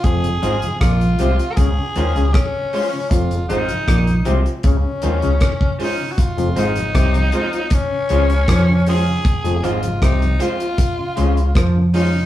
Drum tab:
HH |xxxxxxxxx-xxx-o-|xxxxxxxxx-xxx-o-|xxxxxxxxx-xxx-o-|xxxxxxxxx-xxx-o-|
SD |----r-------r---|----r-------r---|----r-------r---|----r-------r---|
BD |o---o---o---o---|o---o---o---oo--|o---o---o---o---|o---o---o---o---|